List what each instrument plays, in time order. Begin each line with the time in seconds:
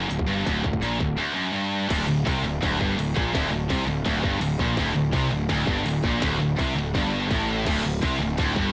0.09 picked electric bass D1, distorted electric guitar D2, open hi-hat
0.19 kick
0.28 picked electric bass G1, distorted electric guitar G2
0.46 picked electric bass D1, distorted electric guitar D2, kick, open hi-hat
0.64 picked electric bass D1, distorted electric guitar D2, kick
0.73 kick
0.82 picked electric bass A#1, distorted electric guitar A#2, open hi-hat
1.00 picked electric bass D1, distorted electric guitar D2, kick
1.18 distorted electric guitar D2
1.34 distorted electric guitar F#2
1.53 distorted electric guitar G2
1.89 picked electric bass D1, distorted electric guitar D2, kick, crash
2.07 picked electric bass D1, distorted electric guitar D2
2.25 picked electric bass C2, distorted electric guitar C3, kick, crash
2.44 picked electric bass D1, distorted electric guitar D2
2.62 picked electric bass D1, distorted electric guitar D2, kick, crash
2.81 picked electric bass G1, distorted electric guitar G2, kick
2.98 picked electric bass D1, distorted electric guitar D2, crash
3.15 picked electric bass A#1, distorted electric guitar A#2, kick
3.34 picked electric bass D1, distorted electric guitar D2, kick, snare, crash
3.51 picked electric bass D1, distorted electric guitar D2
3.69 picked electric bass C2, distorted electric guitar C3, kick, crash
3.86 picked electric bass D1, distorted electric guitar D2
4.04 picked electric bass D1, distorted electric guitar D2, kick, crash
4.23 picked electric bass G1, distorted electric guitar G2, kick
4.40 picked electric bass D1, distorted electric guitar D2, crash
4.59 picked electric bass A#1, distorted electric guitar A#2, kick
4.77 picked electric bass D1, distorted electric guitar D2, kick, crash
4.94 picked electric bass D1, distorted electric guitar D2
5.12 picked electric bass C2, distorted electric guitar C3, kick, crash
5.30 picked electric bass D1, distorted electric guitar D2
5.49 picked electric bass D1, distorted electric guitar D2, kick, crash
5.67 picked electric bass G1, distorted electric guitar G2, kick
5.86 picked electric bass D1, distorted electric guitar D2, crash
6.04 picked electric bass A#1, distorted electric guitar A#2, kick
6.22 picked electric bass D1, distorted electric guitar D2, kick, snare, crash
6.39 picked electric bass D1, distorted electric guitar D2
6.58 picked electric bass C2, distorted electric guitar C3, kick, crash
6.77 picked electric bass D1, distorted electric guitar D2
6.95 picked electric bass G1, distorted electric guitar G2, kick, crash
7.30 picked electric bass A1, distorted electric guitar A2, kick, crash
7.66 picked electric bass D1, distorted electric guitar D2, kick, crash
7.84 picked electric bass D1, distorted electric guitar D2
8.02 picked electric bass C2, distorted electric guitar C3, kick, crash
8.21 picked electric bass D1, distorted electric guitar D2
8.38 picked electric bass D1, distorted electric guitar D2, kick, crash
8.56 picked electric bass G1, distorted electric guitar G2, kick